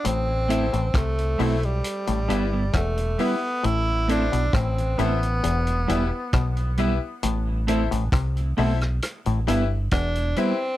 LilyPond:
<<
  \new Staff \with { instrumentName = "Grand piano" } { \time 4/4 \key a \minor \tempo 4 = 67 r8 <e' a' c'' e''>8 r8 <e' a' c'' e''>8 r8 <e' g' b' e''>8 r8 <e' g' b' e''>8 | r8 <e' a' c'' e''>8 r8 <e' a' c'' e''>8 r8 <e' g' b' e''>8 r8 <e' g' b' e''>8 | r8 <e' a' c'' e''>8 r8 <e' a' c'' e''>8 r8 <e' g' b' e''>8 r8 <e' g' b' e''>8 | }
  \new Staff \with { instrumentName = "Tenor saxophone" } { \time 4/4 \key a \minor c'4 a8. g4~ g16 a8 b8 | e'8 d'8 c'8 b2 r8 | r2. d'8 c'8 | }
  \new Staff \with { instrumentName = "Clean electric guitar" } { \time 4/4 \key a \minor r8 <a c' e'>16 r8. <a c' e'>16 r8. <g b e'>16 <g b e'>16 r8 <g b e'>16 r16 | r8 <a c' e'>16 r8. <a c' e'>16 r8. <g b e'>16 r8. <g b e'>16 r16 | r8 <a c' e'>16 r8. <a c' e'>16 r8. <g b e'>16 r8. <g b e'>16 r16 | }
  \new Staff \with { instrumentName = "Clav" } { \clef bass \time 4/4 \key a \minor a,8 r16 a,16 c8 b,8 r16 a,16 g,8 e,8 r8 | a,8 r16 b,16 a,8 a,8 e,8 e,16 r16 b,8 r8 | a,8 r16 a,16 c8 b,8 r16 a,16 g,8 e,8 r8 | }
  \new Staff \with { instrumentName = "Fingered electric bass" } { \clef bass \time 4/4 \key a \minor a,,8. a,,16 c,8 b,,8 r16 a,,16 g,,8 e,,8 r8 | a,,8. b,,16 a,,8 a,,8 e,,8 e,,16 r16 b,,8. r16 | a,,8. a,,16 c,8 b,,8 r16 a,,16 g,,8 e,,8 r8 | }
  \new DrumStaff \with { instrumentName = "Drums" } \drummode { \time 4/4 hh8 hh16 hh16 <hh bd ss>16 hh16 hho16 hh16 hh16 hh16 hh8 <hh bd ss>16 hh16 hho8 | hh8 hh16 hh16 <hh bd ss>16 hh16 hh16 hh16 hh16 hh16 hh8 <hh bd ss>16 hh16 hh8 | hh8 hh16 hh16 <hh bd ss>16 hh16 hho16 <hh ss>16 <hh ss>16 hh16 hh8 <hh bd ss>16 hh16 hh8 | }
>>